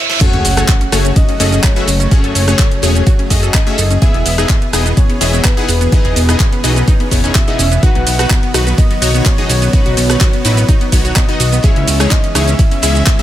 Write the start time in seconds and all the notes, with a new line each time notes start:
Already playing: E5, reverse cymbal, riser
0.10 snare
0.21 C#3 F#3 A3 C#4 F#4 G#4 A4 C#5 F#5, kick, closed hi-hat, crash, sub drop, shaker
0.33 F#1 C#4, snare, closed hi-hat
0.45 F#1 C#4, open hi-hat, shaker
0.56 A3 C#4 F#4 G#4 A4 C#5, cross-stick, snare, closed hi-hat, shaker
0.68 C#4, kick, snare, clap, closed hi-hat, shaker
0.81 C#4, closed hi-hat
0.92 F#1 A3 C#4 F#4 G#4 A4 C#5, cross-stick, closed hi-hat, open hi-hat, shaker
1.05 C#4, closed hi-hat, shaker
1.16 C#4 D#5, kick, closed hi-hat, shaker
1.29 C#4, closed hi-hat
1.40 F#1 A3 C#4 F#4 G#4 A4 D#5, closed hi-hat, open hi-hat, shaker
1.52 C#4, closed hi-hat, shaker
1.64 C#5, kick, snare, clap, closed hi-hat, shaker
1.76 A3 C#4 F#4 G#4 B4 E5, snare, closed hi-hat
1.88 F#1 C#4 C#5, closed hi-hat, open hi-hat, shaker
2.00 C#4, closed hi-hat, shaker
2.11 A3 C#4 F#4 G#4 C#5, kick, closed hi-hat, shaker
2.24 F#1 A4, closed hi-hat
2.35 F#1 C#4, closed hi-hat, open hi-hat, shaker
2.47 A3 C#4 F#4 G#4 C#5, cross-stick, snare, closed hi-hat, shaker
2.58 A4, kick, snare, clap, closed hi-hat, shaker
2.72 C#4, closed hi-hat
2.82 E1 A3 C#4 F#4 G#4 C#5, closed hi-hat, open hi-hat, shaker
2.95 C#4, closed hi-hat, shaker
3.06 F#4, kick, closed hi-hat, shaker
3.19 C#4, closed hi-hat
3.30 F#1 A3 C#4 F#4 G#4 D#5, kick, closed hi-hat, open hi-hat, shaker
3.43 A4, snare, closed hi-hat, shaker
3.54 C#4 D#5, kick, snare, clap, closed hi-hat, shaker
3.67 A3 C#4 F#4 G#4 E5, closed hi-hat
3.78 F#1 A4, closed hi-hat, open hi-hat, shaker
3.91 C#4, closed hi-hat, shaker
4.02 B2 E3 B3 E4 G#4 E5, kick, closed hi-hat, shaker
4.14 E1 B3, snare, closed hi-hat
4.26 E1 B3, open hi-hat, shaker
4.38 B3 D#4 E4 G#4 D#5, cross-stick, snare, closed hi-hat, shaker
4.49 B3, kick, snare, clap, closed hi-hat, shaker
4.62 B3, closed hi-hat
4.73 E1 B3 D#4 E4 G#4 D#5, cross-stick, closed hi-hat, open hi-hat, shaker
4.86 B3, closed hi-hat, shaker
4.97 B3 C#5, kick, closed hi-hat, shaker
5.09 B3, closed hi-hat
5.21 E1 B3 E4 G#4 D#5 E5, closed hi-hat, open hi-hat, shaker
5.33 B3, closed hi-hat, shaker
5.44 B3 B4, kick, snare, clap, closed hi-hat
5.56 B3 D#4 E4 G#4 F#5, snare, closed hi-hat
5.68 E1 B3 B4, closed hi-hat, open hi-hat, shaker
5.81 B3, closed hi-hat, shaker
5.92 B3 C#4 D#4 E4 G#4 D#5, kick, closed hi-hat, shaker
6.05 E1 G#4, closed hi-hat
6.16 E1 B3, closed hi-hat, open hi-hat, shaker
6.28 B3 D#4 E4 G#4 D#5, cross-stick, snare, closed hi-hat, shaker
6.39 G#4, kick, snare, clap, closed hi-hat, shaker
6.52 B3, closed hi-hat
6.64 B1 B3 D#4 E4 F#4 G#4 D#5, closed hi-hat, open hi-hat, shaker
6.76 B3, closed hi-hat, shaker
6.88 D#4, kick, closed hi-hat, shaker
7.00 B3, closed hi-hat
7.11 E1 B3 D#4 E4 G#4 C#5, kick, closed hi-hat, open hi-hat, shaker
7.24 B3 C#4 D#4 E4 G#4 C#5, snare, closed hi-hat, shaker
7.35 B3 E5, kick, snare, clap, closed hi-hat, shaker
7.48 B3 D#4 E4 G#4 D#5, closed hi-hat
7.59 E1 C#4, closed hi-hat, open hi-hat, shaker
7.72 B3, closed hi-hat, shaker
7.83 D#3 F#3 B3 D#4 F#4 B4 F#5, kick, closed hi-hat, shaker
7.95 B1 B3, snare, closed hi-hat
8.07 B1 B3, open hi-hat, ride, shaker
8.19 D#4 F#4 B4, cross-stick, snare, closed hi-hat, shaker
8.30 B3, kick, snare, clap, closed hi-hat, shaker
8.43 B3, closed hi-hat
8.54 B1 D#4 F#4 B4, cross-stick, closed hi-hat, open hi-hat, ride, shaker
8.67 B3, closed hi-hat, shaker
8.78 B3 D#5, kick, closed hi-hat, shaker
8.91 B3, closed hi-hat
9.02 B1 D#4 F#4 C#5, closed hi-hat, open hi-hat, ride, shaker
9.14 B3, closed hi-hat, shaker
9.26 B3 C#5, kick, snare, clap, closed hi-hat, shaker
9.38 D#4 F#4 G#4 D#5, snare, closed hi-hat
9.50 B1 B3 C#5, closed hi-hat, open hi-hat, ride, shaker
9.62 B3, closed hi-hat, shaker
9.73 B3 D#4 F#4 B4, kick, closed hi-hat, shaker
9.86 B1 F#4, closed hi-hat
9.97 B1 B3, closed hi-hat, open hi-hat, ride, shaker
10.10 B3 D#4 F#4 B4, cross-stick, snare, closed hi-hat, shaker
10.21 F#4, kick, snare, clap, closed hi-hat, shaker
10.33 B3, closed hi-hat
10.45 A1 D#4 E4 F#4 B4, closed hi-hat, open hi-hat, ride, shaker
10.57 B3, closed hi-hat, shaker
10.69 D#4, kick, closed hi-hat, shaker
10.81 B3, closed hi-hat
10.92 B1 B3 D#4 F#4 C#5, kick, closed hi-hat, open hi-hat, ride, shaker
11.05 F#4, snare, closed hi-hat, shaker
11.16 B3 D#5, kick, snare, clap, closed hi-hat, shaker
11.29 B3 D#4 F#4 D#5, closed hi-hat
11.40 B1 F#4, closed hi-hat, open hi-hat, ride, shaker
11.52 B3, closed hi-hat, shaker
11.63 C#3 E3 G#3 C#4 E4 G#4 C#5 E5, kick, closed hi-hat, shaker
11.76 C#2 C#4, snare, closed hi-hat
11.87 C#2 C#4, open hi-hat, ride, shaker
12.00 G#3 C#4 D#4 E4 G#4 C#5, cross-stick, snare, closed hi-hat, shaker
12.11 C#4 D#5, kick, snare, clap, closed hi-hat, shaker
12.24 C#4, closed hi-hat
12.35 C#2 G#3 C#4 D#4 E4 G#4 C#5 E5, cross-stick, closed hi-hat, open hi-hat, ride, shaker
12.48 C#4, closed hi-hat, shaker
12.59 C#4, kick, closed hi-hat, shaker
12.71 C#4, closed hi-hat
12.82 C#2 G#3 C#4 E4 G#4 E5, closed hi-hat, open hi-hat, ride, shaker
12.95 C#4, closed hi-hat, shaker
13.05 C#4, kick, snare, clap, closed hi-hat, shaker
13.19 G#3 C#4 D#4 E4 G#4 E5, closed hi-hat